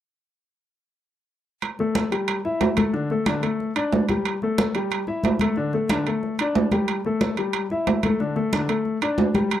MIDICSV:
0, 0, Header, 1, 3, 480
1, 0, Start_track
1, 0, Tempo, 328947
1, 2367, Time_signature, 4, 2, 24, 8
1, 14008, End_track
2, 0, Start_track
2, 0, Title_t, "Grand piano"
2, 0, Program_c, 0, 0
2, 2626, Note_on_c, 0, 69, 60
2, 2628, Note_on_c, 0, 57, 60
2, 3012, Note_off_c, 0, 69, 0
2, 3013, Note_off_c, 0, 57, 0
2, 3089, Note_on_c, 0, 55, 62
2, 3094, Note_on_c, 0, 67, 59
2, 3482, Note_off_c, 0, 55, 0
2, 3485, Note_off_c, 0, 67, 0
2, 3573, Note_on_c, 0, 76, 66
2, 3574, Note_on_c, 0, 64, 67
2, 3964, Note_off_c, 0, 76, 0
2, 3965, Note_off_c, 0, 64, 0
2, 4034, Note_on_c, 0, 57, 62
2, 4048, Note_on_c, 0, 69, 63
2, 4236, Note_off_c, 0, 57, 0
2, 4245, Note_off_c, 0, 69, 0
2, 4276, Note_on_c, 0, 50, 66
2, 4282, Note_on_c, 0, 62, 63
2, 4477, Note_off_c, 0, 50, 0
2, 4481, Note_off_c, 0, 62, 0
2, 4536, Note_on_c, 0, 57, 59
2, 4541, Note_on_c, 0, 69, 61
2, 4729, Note_off_c, 0, 57, 0
2, 4732, Note_off_c, 0, 69, 0
2, 4780, Note_on_c, 0, 50, 67
2, 4780, Note_on_c, 0, 62, 66
2, 4972, Note_off_c, 0, 50, 0
2, 4972, Note_off_c, 0, 62, 0
2, 5001, Note_on_c, 0, 57, 60
2, 5001, Note_on_c, 0, 69, 62
2, 5397, Note_off_c, 0, 57, 0
2, 5397, Note_off_c, 0, 69, 0
2, 5484, Note_on_c, 0, 74, 68
2, 5488, Note_on_c, 0, 62, 65
2, 5879, Note_off_c, 0, 74, 0
2, 5881, Note_off_c, 0, 62, 0
2, 5977, Note_on_c, 0, 55, 62
2, 5983, Note_on_c, 0, 67, 63
2, 6366, Note_off_c, 0, 55, 0
2, 6370, Note_off_c, 0, 67, 0
2, 6463, Note_on_c, 0, 57, 62
2, 6468, Note_on_c, 0, 69, 62
2, 6850, Note_off_c, 0, 57, 0
2, 6853, Note_off_c, 0, 69, 0
2, 6933, Note_on_c, 0, 55, 63
2, 6937, Note_on_c, 0, 67, 60
2, 7323, Note_off_c, 0, 55, 0
2, 7326, Note_off_c, 0, 67, 0
2, 7408, Note_on_c, 0, 64, 66
2, 7413, Note_on_c, 0, 76, 67
2, 7801, Note_off_c, 0, 64, 0
2, 7804, Note_off_c, 0, 76, 0
2, 7902, Note_on_c, 0, 57, 65
2, 7906, Note_on_c, 0, 69, 63
2, 8092, Note_off_c, 0, 57, 0
2, 8094, Note_off_c, 0, 69, 0
2, 8129, Note_on_c, 0, 62, 66
2, 8130, Note_on_c, 0, 50, 63
2, 8325, Note_off_c, 0, 50, 0
2, 8325, Note_off_c, 0, 62, 0
2, 8370, Note_on_c, 0, 57, 61
2, 8382, Note_on_c, 0, 69, 59
2, 8565, Note_off_c, 0, 57, 0
2, 8572, Note_off_c, 0, 69, 0
2, 8624, Note_on_c, 0, 50, 65
2, 8632, Note_on_c, 0, 62, 63
2, 8813, Note_off_c, 0, 50, 0
2, 8818, Note_off_c, 0, 62, 0
2, 8865, Note_on_c, 0, 69, 57
2, 8867, Note_on_c, 0, 57, 60
2, 9250, Note_off_c, 0, 69, 0
2, 9252, Note_off_c, 0, 57, 0
2, 9348, Note_on_c, 0, 62, 65
2, 9355, Note_on_c, 0, 74, 61
2, 9732, Note_off_c, 0, 62, 0
2, 9736, Note_off_c, 0, 74, 0
2, 9814, Note_on_c, 0, 55, 60
2, 9815, Note_on_c, 0, 67, 64
2, 10204, Note_off_c, 0, 55, 0
2, 10204, Note_off_c, 0, 67, 0
2, 10300, Note_on_c, 0, 57, 61
2, 10304, Note_on_c, 0, 69, 63
2, 10687, Note_off_c, 0, 57, 0
2, 10690, Note_off_c, 0, 69, 0
2, 10773, Note_on_c, 0, 55, 62
2, 10779, Note_on_c, 0, 67, 59
2, 11163, Note_off_c, 0, 55, 0
2, 11166, Note_off_c, 0, 67, 0
2, 11255, Note_on_c, 0, 64, 64
2, 11257, Note_on_c, 0, 76, 68
2, 11644, Note_off_c, 0, 64, 0
2, 11645, Note_off_c, 0, 76, 0
2, 11748, Note_on_c, 0, 69, 65
2, 11750, Note_on_c, 0, 57, 63
2, 11935, Note_off_c, 0, 69, 0
2, 11936, Note_off_c, 0, 57, 0
2, 11964, Note_on_c, 0, 50, 65
2, 11969, Note_on_c, 0, 62, 63
2, 12161, Note_off_c, 0, 50, 0
2, 12164, Note_off_c, 0, 62, 0
2, 12196, Note_on_c, 0, 57, 62
2, 12206, Note_on_c, 0, 69, 62
2, 12396, Note_off_c, 0, 57, 0
2, 12402, Note_off_c, 0, 69, 0
2, 12444, Note_on_c, 0, 50, 65
2, 12453, Note_on_c, 0, 62, 68
2, 12640, Note_off_c, 0, 50, 0
2, 12646, Note_off_c, 0, 62, 0
2, 12681, Note_on_c, 0, 57, 62
2, 12687, Note_on_c, 0, 69, 62
2, 13075, Note_off_c, 0, 57, 0
2, 13079, Note_off_c, 0, 69, 0
2, 13166, Note_on_c, 0, 62, 68
2, 13166, Note_on_c, 0, 74, 65
2, 13558, Note_off_c, 0, 62, 0
2, 13558, Note_off_c, 0, 74, 0
2, 13644, Note_on_c, 0, 55, 65
2, 13649, Note_on_c, 0, 67, 64
2, 14008, Note_off_c, 0, 55, 0
2, 14008, Note_off_c, 0, 67, 0
2, 14008, End_track
3, 0, Start_track
3, 0, Title_t, "Drums"
3, 2367, Note_on_c, 9, 65, 74
3, 2369, Note_on_c, 9, 63, 31
3, 2513, Note_off_c, 9, 65, 0
3, 2515, Note_off_c, 9, 63, 0
3, 2612, Note_on_c, 9, 63, 31
3, 2758, Note_off_c, 9, 63, 0
3, 2848, Note_on_c, 9, 63, 81
3, 2851, Note_on_c, 9, 65, 62
3, 2851, Note_on_c, 9, 66, 51
3, 2994, Note_off_c, 9, 63, 0
3, 2997, Note_off_c, 9, 65, 0
3, 2997, Note_off_c, 9, 66, 0
3, 3096, Note_on_c, 9, 65, 59
3, 3242, Note_off_c, 9, 65, 0
3, 3326, Note_on_c, 9, 65, 84
3, 3338, Note_on_c, 9, 63, 30
3, 3471, Note_off_c, 9, 65, 0
3, 3484, Note_off_c, 9, 63, 0
3, 3574, Note_on_c, 9, 63, 29
3, 3720, Note_off_c, 9, 63, 0
3, 3805, Note_on_c, 9, 63, 71
3, 3805, Note_on_c, 9, 65, 62
3, 3805, Note_on_c, 9, 66, 72
3, 3951, Note_off_c, 9, 63, 0
3, 3951, Note_off_c, 9, 65, 0
3, 3951, Note_off_c, 9, 66, 0
3, 4039, Note_on_c, 9, 65, 78
3, 4050, Note_on_c, 9, 63, 73
3, 4185, Note_off_c, 9, 65, 0
3, 4196, Note_off_c, 9, 63, 0
3, 4287, Note_on_c, 9, 63, 31
3, 4433, Note_off_c, 9, 63, 0
3, 4524, Note_on_c, 9, 63, 32
3, 4670, Note_off_c, 9, 63, 0
3, 4760, Note_on_c, 9, 63, 78
3, 4761, Note_on_c, 9, 65, 79
3, 4761, Note_on_c, 9, 66, 55
3, 4906, Note_off_c, 9, 63, 0
3, 4907, Note_off_c, 9, 65, 0
3, 4907, Note_off_c, 9, 66, 0
3, 5005, Note_on_c, 9, 65, 58
3, 5151, Note_off_c, 9, 65, 0
3, 5256, Note_on_c, 9, 63, 29
3, 5402, Note_off_c, 9, 63, 0
3, 5486, Note_on_c, 9, 65, 82
3, 5498, Note_on_c, 9, 63, 31
3, 5631, Note_off_c, 9, 65, 0
3, 5644, Note_off_c, 9, 63, 0
3, 5727, Note_on_c, 9, 66, 73
3, 5738, Note_on_c, 9, 63, 70
3, 5873, Note_off_c, 9, 66, 0
3, 5884, Note_off_c, 9, 63, 0
3, 5962, Note_on_c, 9, 65, 59
3, 5973, Note_on_c, 9, 63, 73
3, 6108, Note_off_c, 9, 65, 0
3, 6118, Note_off_c, 9, 63, 0
3, 6208, Note_on_c, 9, 65, 85
3, 6213, Note_on_c, 9, 63, 31
3, 6354, Note_off_c, 9, 65, 0
3, 6359, Note_off_c, 9, 63, 0
3, 6447, Note_on_c, 9, 63, 31
3, 6593, Note_off_c, 9, 63, 0
3, 6686, Note_on_c, 9, 65, 63
3, 6686, Note_on_c, 9, 66, 54
3, 6688, Note_on_c, 9, 63, 85
3, 6832, Note_off_c, 9, 65, 0
3, 6832, Note_off_c, 9, 66, 0
3, 6833, Note_off_c, 9, 63, 0
3, 6926, Note_on_c, 9, 65, 59
3, 7072, Note_off_c, 9, 65, 0
3, 7162, Note_on_c, 9, 63, 30
3, 7173, Note_on_c, 9, 65, 77
3, 7308, Note_off_c, 9, 63, 0
3, 7319, Note_off_c, 9, 65, 0
3, 7398, Note_on_c, 9, 63, 32
3, 7544, Note_off_c, 9, 63, 0
3, 7639, Note_on_c, 9, 63, 70
3, 7657, Note_on_c, 9, 65, 60
3, 7657, Note_on_c, 9, 66, 72
3, 7785, Note_off_c, 9, 63, 0
3, 7803, Note_off_c, 9, 65, 0
3, 7803, Note_off_c, 9, 66, 0
3, 7870, Note_on_c, 9, 63, 72
3, 7894, Note_on_c, 9, 65, 79
3, 8016, Note_off_c, 9, 63, 0
3, 8040, Note_off_c, 9, 65, 0
3, 8111, Note_on_c, 9, 63, 32
3, 8257, Note_off_c, 9, 63, 0
3, 8361, Note_on_c, 9, 63, 33
3, 8507, Note_off_c, 9, 63, 0
3, 8601, Note_on_c, 9, 63, 86
3, 8611, Note_on_c, 9, 65, 85
3, 8611, Note_on_c, 9, 66, 54
3, 8747, Note_off_c, 9, 63, 0
3, 8757, Note_off_c, 9, 65, 0
3, 8757, Note_off_c, 9, 66, 0
3, 8852, Note_on_c, 9, 65, 58
3, 8997, Note_off_c, 9, 65, 0
3, 9090, Note_on_c, 9, 63, 31
3, 9236, Note_off_c, 9, 63, 0
3, 9318, Note_on_c, 9, 63, 31
3, 9325, Note_on_c, 9, 65, 83
3, 9464, Note_off_c, 9, 63, 0
3, 9471, Note_off_c, 9, 65, 0
3, 9563, Note_on_c, 9, 66, 74
3, 9567, Note_on_c, 9, 63, 70
3, 9709, Note_off_c, 9, 66, 0
3, 9712, Note_off_c, 9, 63, 0
3, 9797, Note_on_c, 9, 63, 70
3, 9805, Note_on_c, 9, 65, 57
3, 9943, Note_off_c, 9, 63, 0
3, 9951, Note_off_c, 9, 65, 0
3, 10039, Note_on_c, 9, 65, 79
3, 10040, Note_on_c, 9, 63, 32
3, 10185, Note_off_c, 9, 65, 0
3, 10186, Note_off_c, 9, 63, 0
3, 10281, Note_on_c, 9, 63, 29
3, 10426, Note_off_c, 9, 63, 0
3, 10519, Note_on_c, 9, 63, 80
3, 10520, Note_on_c, 9, 65, 61
3, 10520, Note_on_c, 9, 66, 52
3, 10665, Note_off_c, 9, 63, 0
3, 10666, Note_off_c, 9, 65, 0
3, 10666, Note_off_c, 9, 66, 0
3, 10758, Note_on_c, 9, 65, 58
3, 10904, Note_off_c, 9, 65, 0
3, 10992, Note_on_c, 9, 65, 78
3, 11002, Note_on_c, 9, 63, 31
3, 11138, Note_off_c, 9, 65, 0
3, 11148, Note_off_c, 9, 63, 0
3, 11237, Note_on_c, 9, 63, 31
3, 11383, Note_off_c, 9, 63, 0
3, 11485, Note_on_c, 9, 63, 71
3, 11485, Note_on_c, 9, 65, 60
3, 11485, Note_on_c, 9, 66, 76
3, 11631, Note_off_c, 9, 63, 0
3, 11631, Note_off_c, 9, 65, 0
3, 11631, Note_off_c, 9, 66, 0
3, 11720, Note_on_c, 9, 65, 78
3, 11722, Note_on_c, 9, 63, 69
3, 11865, Note_off_c, 9, 65, 0
3, 11868, Note_off_c, 9, 63, 0
3, 11966, Note_on_c, 9, 63, 30
3, 12112, Note_off_c, 9, 63, 0
3, 12199, Note_on_c, 9, 63, 31
3, 12345, Note_off_c, 9, 63, 0
3, 12444, Note_on_c, 9, 63, 85
3, 12447, Note_on_c, 9, 65, 81
3, 12447, Note_on_c, 9, 66, 53
3, 12590, Note_off_c, 9, 63, 0
3, 12592, Note_off_c, 9, 65, 0
3, 12592, Note_off_c, 9, 66, 0
3, 12681, Note_on_c, 9, 65, 64
3, 12827, Note_off_c, 9, 65, 0
3, 12918, Note_on_c, 9, 63, 30
3, 13064, Note_off_c, 9, 63, 0
3, 13154, Note_on_c, 9, 63, 30
3, 13162, Note_on_c, 9, 65, 82
3, 13300, Note_off_c, 9, 63, 0
3, 13308, Note_off_c, 9, 65, 0
3, 13393, Note_on_c, 9, 63, 70
3, 13399, Note_on_c, 9, 66, 69
3, 13539, Note_off_c, 9, 63, 0
3, 13545, Note_off_c, 9, 66, 0
3, 13637, Note_on_c, 9, 63, 68
3, 13643, Note_on_c, 9, 65, 55
3, 13783, Note_off_c, 9, 63, 0
3, 13789, Note_off_c, 9, 65, 0
3, 13880, Note_on_c, 9, 63, 31
3, 13883, Note_on_c, 9, 65, 85
3, 14008, Note_off_c, 9, 63, 0
3, 14008, Note_off_c, 9, 65, 0
3, 14008, End_track
0, 0, End_of_file